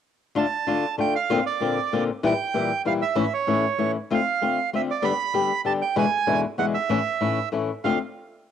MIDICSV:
0, 0, Header, 1, 3, 480
1, 0, Start_track
1, 0, Key_signature, -1, "minor"
1, 0, Tempo, 312175
1, 547, Time_signature, 3, 2, 24, 8
1, 13093, End_track
2, 0, Start_track
2, 0, Title_t, "Bandoneon"
2, 0, Program_c, 0, 23
2, 579, Note_on_c, 0, 81, 85
2, 1471, Note_off_c, 0, 81, 0
2, 1544, Note_on_c, 0, 79, 90
2, 1755, Note_off_c, 0, 79, 0
2, 1775, Note_on_c, 0, 77, 85
2, 2217, Note_off_c, 0, 77, 0
2, 2249, Note_on_c, 0, 74, 85
2, 3137, Note_off_c, 0, 74, 0
2, 3470, Note_on_c, 0, 79, 99
2, 4337, Note_off_c, 0, 79, 0
2, 4409, Note_on_c, 0, 77, 92
2, 4509, Note_off_c, 0, 77, 0
2, 4642, Note_on_c, 0, 76, 85
2, 5122, Note_off_c, 0, 76, 0
2, 5130, Note_on_c, 0, 73, 81
2, 6018, Note_off_c, 0, 73, 0
2, 6358, Note_on_c, 0, 77, 90
2, 7228, Note_off_c, 0, 77, 0
2, 7312, Note_on_c, 0, 76, 84
2, 7408, Note_off_c, 0, 76, 0
2, 7544, Note_on_c, 0, 74, 94
2, 7753, Note_on_c, 0, 83, 103
2, 7765, Note_off_c, 0, 74, 0
2, 8630, Note_off_c, 0, 83, 0
2, 8707, Note_on_c, 0, 81, 94
2, 8809, Note_off_c, 0, 81, 0
2, 8947, Note_on_c, 0, 79, 86
2, 9156, Note_off_c, 0, 79, 0
2, 9198, Note_on_c, 0, 80, 103
2, 9848, Note_off_c, 0, 80, 0
2, 10130, Note_on_c, 0, 78, 96
2, 10236, Note_off_c, 0, 78, 0
2, 10364, Note_on_c, 0, 76, 94
2, 11515, Note_off_c, 0, 76, 0
2, 12058, Note_on_c, 0, 77, 88
2, 12283, Note_off_c, 0, 77, 0
2, 13093, End_track
3, 0, Start_track
3, 0, Title_t, "Nylon-string guitar"
3, 0, Program_c, 1, 24
3, 540, Note_on_c, 1, 50, 89
3, 549, Note_on_c, 1, 57, 89
3, 553, Note_on_c, 1, 65, 102
3, 556, Note_on_c, 1, 62, 107
3, 683, Note_off_c, 1, 50, 0
3, 687, Note_off_c, 1, 57, 0
3, 689, Note_off_c, 1, 65, 0
3, 691, Note_off_c, 1, 62, 0
3, 1027, Note_on_c, 1, 50, 68
3, 1032, Note_on_c, 1, 62, 67
3, 1036, Note_on_c, 1, 57, 75
3, 1042, Note_on_c, 1, 65, 76
3, 1291, Note_off_c, 1, 50, 0
3, 1294, Note_off_c, 1, 62, 0
3, 1295, Note_off_c, 1, 57, 0
3, 1299, Note_off_c, 1, 65, 0
3, 1503, Note_on_c, 1, 50, 63
3, 1513, Note_on_c, 1, 57, 73
3, 1513, Note_on_c, 1, 62, 67
3, 1517, Note_on_c, 1, 65, 66
3, 1769, Note_off_c, 1, 50, 0
3, 1775, Note_off_c, 1, 57, 0
3, 1775, Note_off_c, 1, 62, 0
3, 1776, Note_off_c, 1, 65, 0
3, 1996, Note_on_c, 1, 46, 102
3, 1999, Note_on_c, 1, 50, 96
3, 2003, Note_on_c, 1, 58, 95
3, 2008, Note_on_c, 1, 65, 105
3, 2009, Note_on_c, 1, 60, 111
3, 2136, Note_off_c, 1, 46, 0
3, 2137, Note_off_c, 1, 50, 0
3, 2139, Note_off_c, 1, 58, 0
3, 2141, Note_off_c, 1, 65, 0
3, 2142, Note_off_c, 1, 60, 0
3, 2466, Note_on_c, 1, 46, 66
3, 2475, Note_on_c, 1, 50, 67
3, 2482, Note_on_c, 1, 58, 77
3, 2484, Note_on_c, 1, 60, 82
3, 2488, Note_on_c, 1, 65, 82
3, 2730, Note_off_c, 1, 46, 0
3, 2735, Note_off_c, 1, 50, 0
3, 2738, Note_off_c, 1, 58, 0
3, 2739, Note_off_c, 1, 60, 0
3, 2741, Note_off_c, 1, 65, 0
3, 2960, Note_on_c, 1, 46, 67
3, 2966, Note_on_c, 1, 50, 78
3, 2966, Note_on_c, 1, 58, 80
3, 2972, Note_on_c, 1, 60, 70
3, 2975, Note_on_c, 1, 65, 80
3, 3214, Note_off_c, 1, 46, 0
3, 3217, Note_off_c, 1, 50, 0
3, 3217, Note_off_c, 1, 58, 0
3, 3220, Note_off_c, 1, 60, 0
3, 3221, Note_off_c, 1, 65, 0
3, 3433, Note_on_c, 1, 52, 108
3, 3437, Note_on_c, 1, 46, 102
3, 3442, Note_on_c, 1, 64, 111
3, 3443, Note_on_c, 1, 55, 111
3, 3567, Note_off_c, 1, 52, 0
3, 3569, Note_off_c, 1, 46, 0
3, 3572, Note_off_c, 1, 55, 0
3, 3572, Note_off_c, 1, 64, 0
3, 3905, Note_on_c, 1, 46, 77
3, 3912, Note_on_c, 1, 55, 69
3, 3913, Note_on_c, 1, 52, 71
3, 3919, Note_on_c, 1, 64, 77
3, 4160, Note_off_c, 1, 46, 0
3, 4164, Note_off_c, 1, 52, 0
3, 4164, Note_off_c, 1, 55, 0
3, 4167, Note_off_c, 1, 64, 0
3, 4382, Note_on_c, 1, 46, 66
3, 4389, Note_on_c, 1, 52, 72
3, 4392, Note_on_c, 1, 55, 74
3, 4399, Note_on_c, 1, 64, 73
3, 4637, Note_off_c, 1, 46, 0
3, 4640, Note_off_c, 1, 52, 0
3, 4642, Note_off_c, 1, 55, 0
3, 4645, Note_off_c, 1, 64, 0
3, 4849, Note_on_c, 1, 45, 89
3, 4852, Note_on_c, 1, 52, 104
3, 4854, Note_on_c, 1, 57, 90
3, 4860, Note_on_c, 1, 64, 97
3, 4863, Note_on_c, 1, 61, 110
3, 4989, Note_off_c, 1, 45, 0
3, 4990, Note_off_c, 1, 52, 0
3, 4991, Note_off_c, 1, 57, 0
3, 4994, Note_off_c, 1, 64, 0
3, 4996, Note_off_c, 1, 61, 0
3, 5335, Note_on_c, 1, 45, 72
3, 5341, Note_on_c, 1, 52, 64
3, 5348, Note_on_c, 1, 61, 70
3, 5350, Note_on_c, 1, 57, 71
3, 5353, Note_on_c, 1, 64, 81
3, 5596, Note_off_c, 1, 45, 0
3, 5599, Note_off_c, 1, 52, 0
3, 5602, Note_off_c, 1, 61, 0
3, 5603, Note_off_c, 1, 57, 0
3, 5605, Note_off_c, 1, 64, 0
3, 5816, Note_on_c, 1, 45, 58
3, 5817, Note_on_c, 1, 57, 67
3, 5818, Note_on_c, 1, 52, 65
3, 5825, Note_on_c, 1, 64, 58
3, 5826, Note_on_c, 1, 61, 66
3, 6079, Note_off_c, 1, 45, 0
3, 6080, Note_off_c, 1, 52, 0
3, 6080, Note_off_c, 1, 57, 0
3, 6084, Note_off_c, 1, 61, 0
3, 6084, Note_off_c, 1, 64, 0
3, 6310, Note_on_c, 1, 50, 91
3, 6320, Note_on_c, 1, 57, 97
3, 6321, Note_on_c, 1, 60, 102
3, 6329, Note_on_c, 1, 65, 91
3, 6445, Note_off_c, 1, 50, 0
3, 6450, Note_off_c, 1, 57, 0
3, 6451, Note_off_c, 1, 60, 0
3, 6455, Note_off_c, 1, 65, 0
3, 6789, Note_on_c, 1, 50, 63
3, 6796, Note_on_c, 1, 57, 72
3, 6797, Note_on_c, 1, 60, 68
3, 6806, Note_on_c, 1, 65, 82
3, 7044, Note_off_c, 1, 50, 0
3, 7048, Note_off_c, 1, 57, 0
3, 7048, Note_off_c, 1, 60, 0
3, 7053, Note_off_c, 1, 65, 0
3, 7278, Note_on_c, 1, 50, 59
3, 7279, Note_on_c, 1, 57, 67
3, 7286, Note_on_c, 1, 65, 74
3, 7287, Note_on_c, 1, 60, 77
3, 7526, Note_off_c, 1, 50, 0
3, 7527, Note_off_c, 1, 57, 0
3, 7530, Note_off_c, 1, 65, 0
3, 7531, Note_off_c, 1, 60, 0
3, 7723, Note_on_c, 1, 50, 86
3, 7730, Note_on_c, 1, 59, 105
3, 7731, Note_on_c, 1, 55, 92
3, 7736, Note_on_c, 1, 67, 102
3, 7864, Note_off_c, 1, 50, 0
3, 7867, Note_off_c, 1, 59, 0
3, 7868, Note_off_c, 1, 55, 0
3, 7870, Note_off_c, 1, 67, 0
3, 8206, Note_on_c, 1, 50, 70
3, 8215, Note_on_c, 1, 59, 70
3, 8216, Note_on_c, 1, 55, 71
3, 8220, Note_on_c, 1, 67, 85
3, 8462, Note_off_c, 1, 50, 0
3, 8467, Note_off_c, 1, 55, 0
3, 8467, Note_off_c, 1, 59, 0
3, 8469, Note_off_c, 1, 67, 0
3, 8683, Note_on_c, 1, 50, 70
3, 8691, Note_on_c, 1, 55, 69
3, 8693, Note_on_c, 1, 59, 77
3, 8698, Note_on_c, 1, 67, 76
3, 8939, Note_off_c, 1, 50, 0
3, 8943, Note_off_c, 1, 55, 0
3, 8944, Note_off_c, 1, 59, 0
3, 8947, Note_off_c, 1, 67, 0
3, 9165, Note_on_c, 1, 40, 105
3, 9168, Note_on_c, 1, 47, 100
3, 9170, Note_on_c, 1, 50, 102
3, 9173, Note_on_c, 1, 56, 103
3, 9173, Note_on_c, 1, 64, 107
3, 9175, Note_on_c, 1, 59, 116
3, 9298, Note_off_c, 1, 40, 0
3, 9300, Note_off_c, 1, 47, 0
3, 9300, Note_off_c, 1, 50, 0
3, 9302, Note_off_c, 1, 56, 0
3, 9302, Note_off_c, 1, 64, 0
3, 9303, Note_off_c, 1, 59, 0
3, 9638, Note_on_c, 1, 40, 71
3, 9642, Note_on_c, 1, 50, 73
3, 9642, Note_on_c, 1, 56, 73
3, 9643, Note_on_c, 1, 47, 74
3, 9650, Note_on_c, 1, 59, 78
3, 9653, Note_on_c, 1, 64, 82
3, 9897, Note_off_c, 1, 40, 0
3, 9898, Note_off_c, 1, 50, 0
3, 9898, Note_off_c, 1, 56, 0
3, 9899, Note_off_c, 1, 47, 0
3, 9902, Note_off_c, 1, 59, 0
3, 9904, Note_off_c, 1, 64, 0
3, 10117, Note_on_c, 1, 40, 78
3, 10122, Note_on_c, 1, 47, 66
3, 10129, Note_on_c, 1, 50, 68
3, 10130, Note_on_c, 1, 59, 81
3, 10132, Note_on_c, 1, 56, 74
3, 10139, Note_on_c, 1, 64, 81
3, 10376, Note_off_c, 1, 40, 0
3, 10379, Note_off_c, 1, 47, 0
3, 10383, Note_off_c, 1, 50, 0
3, 10383, Note_off_c, 1, 59, 0
3, 10384, Note_off_c, 1, 56, 0
3, 10387, Note_off_c, 1, 64, 0
3, 10598, Note_on_c, 1, 45, 91
3, 10603, Note_on_c, 1, 57, 100
3, 10604, Note_on_c, 1, 52, 99
3, 10615, Note_on_c, 1, 61, 114
3, 10620, Note_on_c, 1, 64, 105
3, 10735, Note_off_c, 1, 45, 0
3, 10738, Note_off_c, 1, 52, 0
3, 10738, Note_off_c, 1, 57, 0
3, 10744, Note_off_c, 1, 61, 0
3, 10746, Note_off_c, 1, 64, 0
3, 11080, Note_on_c, 1, 45, 77
3, 11082, Note_on_c, 1, 52, 71
3, 11089, Note_on_c, 1, 57, 72
3, 11094, Note_on_c, 1, 64, 72
3, 11096, Note_on_c, 1, 61, 81
3, 11345, Note_off_c, 1, 45, 0
3, 11346, Note_off_c, 1, 52, 0
3, 11349, Note_off_c, 1, 57, 0
3, 11352, Note_off_c, 1, 64, 0
3, 11353, Note_off_c, 1, 61, 0
3, 11559, Note_on_c, 1, 45, 67
3, 11564, Note_on_c, 1, 52, 65
3, 11570, Note_on_c, 1, 57, 67
3, 11578, Note_on_c, 1, 61, 71
3, 11584, Note_on_c, 1, 64, 70
3, 11830, Note_off_c, 1, 45, 0
3, 11832, Note_off_c, 1, 52, 0
3, 11836, Note_off_c, 1, 57, 0
3, 11840, Note_off_c, 1, 61, 0
3, 11842, Note_off_c, 1, 64, 0
3, 12055, Note_on_c, 1, 50, 91
3, 12070, Note_on_c, 1, 57, 101
3, 12075, Note_on_c, 1, 60, 92
3, 12082, Note_on_c, 1, 65, 98
3, 12251, Note_off_c, 1, 50, 0
3, 12258, Note_off_c, 1, 57, 0
3, 12261, Note_off_c, 1, 60, 0
3, 12264, Note_off_c, 1, 65, 0
3, 13093, End_track
0, 0, End_of_file